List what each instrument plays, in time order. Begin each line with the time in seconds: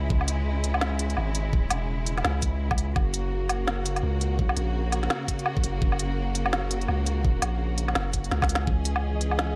Already playing: string section C#3 G#3 E4
0.10 808-style bass C#2, kick
0.21 low woodblock
0.28 closed hi-hat
0.64 closed hi-hat
0.74 low woodblock
0.81 snare
0.99 closed hi-hat
1.10 closed hi-hat
1.17 808-style bass G#1, low woodblock
1.35 closed hi-hat
1.53 kick
1.70 808-style bass E1, closed hi-hat, low woodblock
2.06 closed hi-hat
2.18 snare, low woodblock
2.25 808-style bass C#2, snare
2.42 kick, closed hi-hat
2.71 kick, low woodblock
2.78 closed hi-hat
2.96 808-style bass F#1, string section C#3 A#3 F#4, kick, low woodblock
3.14 closed hi-hat
3.49 closed hi-hat, low woodblock
3.67 snare
3.86 closed hi-hat
3.96 closed hi-hat, low woodblock
4.03 808-style bass C#2
4.21 closed hi-hat
4.39 808-style bass C2, kick
4.49 low woodblock
4.57 808-style bass A#1, closed hi-hat
4.92 closed hi-hat, low woodblock
5.03 snare
5.10 snare
5.28 kick, closed hi-hat
5.39 closed hi-hat
5.46 low woodblock
5.57 kick
5.64 808-style bass F#1, closed hi-hat
5.82 808-style bass F#1, kick
5.92 low woodblock
5.99 closed hi-hat
6.35 closed hi-hat
6.46 low woodblock
6.53 snare
6.71 closed hi-hat
6.81 closed hi-hat
6.88 808-style bass C#2, low woodblock
7.06 closed hi-hat
7.25 kick
7.42 808-style bass A#1, closed hi-hat, low woodblock
7.78 closed hi-hat
7.88 snare, low woodblock
7.95 808-style bass F#1, snare
8.13 kick, closed hi-hat
8.24 closed hi-hat
8.31 808-style bass C#2, snare
8.42 kick, snare, low woodblock
8.49 closed hi-hat
8.55 snare
8.67 808-style bass C#2, string section E3 C#4 G#4, synth texture D#5, kick
8.85 closed hi-hat
8.96 low woodblock
9.21 closed hi-hat
9.31 low woodblock
9.39 snare